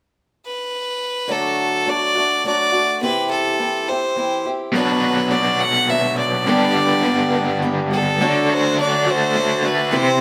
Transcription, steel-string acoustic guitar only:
1.28 1.86 D3 medium
1.28 1.84 F#3 medium
1.28 1.85 A3 medium
1.28 1.86 D4 medium
1.28 1.86 F#4 medium
1.86 2.15 F#3 soft
1.86 2.15 A3 soft
1.86 2.15 D4 soft
1.86 2.14 F#4 medium
2.15 2.44 A3 soft
2.15 2.44 D4 soft
2.15 2.44 F#4 soft
2.44 2.73 F#3 soft
2.44 2.73 A3 soft
2.44 2.73 D4 medium
2.44 2.71 F#4 medium
2.72 3.02 A3 soft
2.72 3.02 D4 soft
2.72 3.01 F#4 soft
3.02 3.59 C3 medium
3.02 3.58 E3 medium
3.02 3.59 C4 medium
3.02 3.59 E4 medium
3.02 3.60 G4 medium
3.59 3.88 E3 soft
3.59 3.88 C4 soft
3.59 3.89 E4 medium
3.59 3.87 G4 medium
3.89 4.16 C4 soft
3.89 4.17 E4 soft
3.89 4.17 G4 soft
4.16 4.45 E3 medium
4.16 4.46 C4 medium
4.16 4.46 E4 medium
4.16 4.44 G4 medium
4.46 4.75 C4 soft
4.46 4.75 E4 soft
4.46 4.74 G4 soft
4.74 5.32 B2 medium
4.74 5.30 F#3 medium
4.74 5.32 B3 medium
4.74 5.33 D4 medium
4.74 5.33 F#4 medium
5.31 5.87 F#3 medium
5.31 5.87 B3 medium
5.31 5.89 D4 medium
5.31 5.90 F#4 medium
5.88 6.46 F#3 soft
5.88 6.47 B3 soft
5.88 6.48 D4 medium
5.88 6.48 F#4 medium
6.47 7.05 G2 medium
6.47 7.05 D3 medium
6.47 7.03 G3 medium
6.47 7.05 B3 medium
6.47 7.05 D4 medium
6.47 7.06 G4 medium
7.04 7.33 G3 medium
7.04 7.34 B3 medium
7.04 7.34 D4 medium
7.04 7.33 G4 medium
7.34 7.61 G3 soft
7.34 7.62 B3 soft
7.34 7.63 D4 soft
7.34 7.63 G4 medium
7.62 7.91 G3 medium
7.62 7.91 B3 medium
7.62 7.91 D4 medium
7.62 7.90 G4 medium
7.91 8.21 G3 soft
7.91 8.21 B3 soft
7.91 8.21 D4 soft
7.91 8.20 G4 soft
8.21 8.78 D3 medium
8.21 8.76 F#3 medium
8.21 8.78 A3 medium
8.21 8.79 D4 medium
8.21 8.79 F#4 medium
8.77 9.06 F#3 medium
8.77 9.07 A3 medium
8.77 9.06 D4 medium
8.77 9.05 F#4 medium
9.06 9.33 A3 soft
9.06 9.34 D4 soft
9.06 9.35 F#4 soft
9.34 9.63 F#3 medium
9.34 9.63 A3 medium
9.34 9.62 D4 medium
9.34 9.61 F#4 medium
9.62 9.92 A3 soft
9.62 9.92 D4 soft
9.62 9.92 F#4 soft
9.91 10.21 C3 medium
9.91 10.21 E3 medium
9.91 10.21 C4 medium
9.91 10.21 E4 medium
9.91 10.21 G4 medium

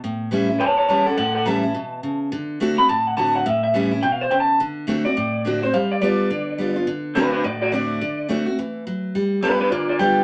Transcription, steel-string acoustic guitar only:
0.04 0.59 A2 medium
0.31 0.49 E3 medium
0.31 0.49 G3 medium
0.31 0.49 C#4 loud
0.31 0.48 E4 loud
0.49 0.61 C#4 soft
0.49 0.60 E4 medium
0.61 1.16 E2 medium
0.89 1.06 E3 medium
0.89 1.06 G3 medium
0.89 1.07 C#4 medium
0.89 1.05 E4 medium
1.06 1.18 C#4 soft
1.06 1.17 E4 medium
1.18 1.72 A2 loud
1.46 1.63 E3 medium
1.46 1.63 G3 loud
1.46 1.64 C#4 medium
1.46 1.62 E4 loud
1.63 1.75 C#4 soft
1.63 1.74 E4 medium
1.75 2.02 B2 medium
2.03 2.31 C#3 medium
2.32 2.59 D3 loud
2.60 2.77 D3 medium
2.60 2.77 A3 loud
2.60 2.78 C4 medium
2.60 2.77 F#4 loud
2.78 2.89 C4 soft
2.78 2.88 F#4 medium
2.89 3.44 A2 medium
3.17 3.44 D3 medium
3.17 3.45 A3 medium
3.17 3.45 C4 medium
3.17 3.45 F#4 medium
3.46 4.01 A2 loud
3.74 3.91 E3 medium
3.74 3.91 G3 medium
3.74 3.92 C#4 medium
3.74 3.90 E4 loud
3.91 4.03 C#4 soft
3.91 4.02 E4 medium
4.03 4.30 B2 medium
4.31 4.59 C#3 medium
4.60 4.86 D3 medium
4.87 5.04 D3 medium
4.87 5.05 A3 loud
4.87 5.05 C4 loud
4.87 5.04 F#4 medium
5.05 5.17 C4 soft
5.05 5.16 F#4 medium
5.17 5.71 A2 medium
5.45 5.62 D3 medium
5.45 5.62 A3 medium
5.45 5.63 C4 medium
5.45 5.62 F#4 loud
5.63 5.74 C4 medium
5.63 5.73 F#4 medium
5.74 6.00 G3 loud
6.01 6.29 G3 medium
6.01 6.30 B3 loud
6.01 6.30 F4 loud
6.30 6.85 D3 medium
6.58 6.76 G3 medium
6.58 6.76 B3 medium
6.58 6.75 F4 medium
6.76 6.88 B3 soft
6.76 6.87 F4 medium
6.87 7.14 D3 medium
7.15 7.43 D3 medium
7.15 7.43 A3 loud
7.15 7.44 C4 loud
7.15 7.44 F#4 loud
7.44 7.99 A2 medium
7.72 8.00 D3 medium
7.72 8.00 A3 medium
7.72 8.00 C4 medium
7.72 8.01 F#4 medium
8.01 8.27 D3 loud
8.29 8.46 D3 medium
8.29 8.46 A3 loud
8.29 8.47 C4 medium
8.29 8.45 F#4 loud
8.46 8.58 C4 medium
8.46 8.57 F#4 medium
8.59 8.86 E3 medium
8.87 9.14 F#3 medium
9.15 9.41 G3 medium
9.43 9.70 G3 loud
9.43 9.71 B3 medium
9.43 9.72 F4 loud
9.72 10.24 D3 medium
9.99 10.24 G3 medium
9.99 10.24 B3 medium
9.99 10.24 F4 medium

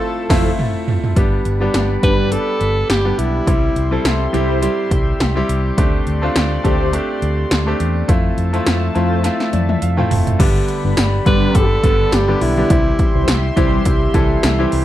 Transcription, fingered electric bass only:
0.30 0.50 F1 medium
1.17 1.37 G1 loud
1.46 1.66 G1 loud
1.74 1.95 G1 medium
2.03 2.35 G1 medium
2.61 2.82 G1 loud
2.90 3.10 G1 medium
3.18 3.39 B1 medium
3.47 3.68 C2 medium
3.76 3.97 C2 medium
4.05 4.25 C2 medium
4.34 4.66 C2 medium
4.91 5.12 C2 medium
5.20 5.41 C2 medium
5.49 5.70 C2 loud
5.78 5.99 D2 loud
6.07 6.28 D2 loud
6.36 6.56 D2 medium
6.65 6.97 D2 medium
7.22 7.43 D2 medium
7.51 7.72 D2 loud
7.80 8.01 E2 medium
8.09 8.30 F2 loud
8.38 8.58 F2 medium
8.67 8.87 F2 medium
8.96 9.28 F2 medium
9.53 9.74 F2 medium
9.82 10.03 F2 medium
10.11 10.32 F1 medium
10.40 10.60 G1 loud
10.85 10.94 G1 loud
10.97 11.18 G1 loud
11.26 11.47 G1 loud
11.55 11.76 G1 loud
11.83 12.04 G1 medium
12.13 12.34 G1 loud
12.41 12.62 B1 loud
12.70 12.91 C2 loud
13.15 13.25 C2 loud
13.28 13.49 C2 loud
13.57 13.78 C2 medium
13.86 14.07 C2 loud
14.14 14.35 C2 medium
14.44 14.64 C2 medium
14.73 14.85 C2 loud

